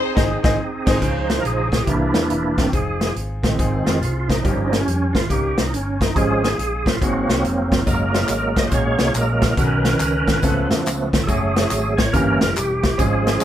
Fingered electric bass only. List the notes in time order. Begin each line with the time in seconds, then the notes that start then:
0.17 G#1
0.44 G#1
0.87 G#1
1.02 C#2
1.44 A#1
1.87 C2
2.14 E2
2.30 E1
2.73 F1
3.16 G#1
3.43 A#1
3.59 G#1
3.86 F1
4.01 C2
4.44 G1
4.87 F2
5.14 D#2
5.30 C#2
5.58 C2
5.73 G1
6.16 G#1
6.58 A#1
7.01 G#1
7.28 C2
7.43 F1
7.87 F#1
8.29 G#1
8.72 A#1
8.99 C2
9.14 A#1
9.57 B1
10.00 C#2
10.27 D#2
10.43 C#2
10.70 E2
10.86 C#2
11.13 D2
11.28 F#1
11.71 G#1
11.98 A1
12.13 G1
12.42 F#1
12.57 E1
12.99 G#1